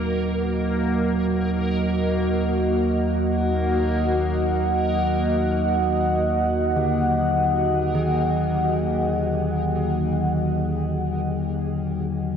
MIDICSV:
0, 0, Header, 1, 5, 480
1, 0, Start_track
1, 0, Tempo, 500000
1, 11874, End_track
2, 0, Start_track
2, 0, Title_t, "Ambient pad"
2, 0, Program_c, 0, 92
2, 0, Note_on_c, 0, 58, 67
2, 0, Note_on_c, 0, 66, 68
2, 0, Note_on_c, 0, 75, 80
2, 0, Note_on_c, 0, 78, 73
2, 11874, Note_off_c, 0, 58, 0
2, 11874, Note_off_c, 0, 66, 0
2, 11874, Note_off_c, 0, 75, 0
2, 11874, Note_off_c, 0, 78, 0
2, 11874, End_track
3, 0, Start_track
3, 0, Title_t, "Synth texture"
3, 0, Program_c, 1, 99
3, 0, Note_on_c, 1, 58, 86
3, 0, Note_on_c, 1, 70, 93
3, 11874, Note_off_c, 1, 58, 0
3, 11874, Note_off_c, 1, 70, 0
3, 11874, End_track
4, 0, Start_track
4, 0, Title_t, "Singing bowl"
4, 0, Program_c, 2, 14
4, 0, Note_on_c, 2, 54, 61
4, 2303, Note_off_c, 2, 54, 0
4, 6493, Note_on_c, 2, 50, 65
4, 7631, Note_on_c, 2, 51, 80
4, 7863, Note_off_c, 2, 50, 0
4, 11874, Note_off_c, 2, 51, 0
4, 11874, End_track
5, 0, Start_track
5, 0, Title_t, "Synth drone"
5, 0, Program_c, 3, 95
5, 0, Note_on_c, 3, 39, 65
5, 0, Note_on_c, 3, 54, 65
5, 11874, Note_off_c, 3, 39, 0
5, 11874, Note_off_c, 3, 54, 0
5, 11874, End_track
0, 0, End_of_file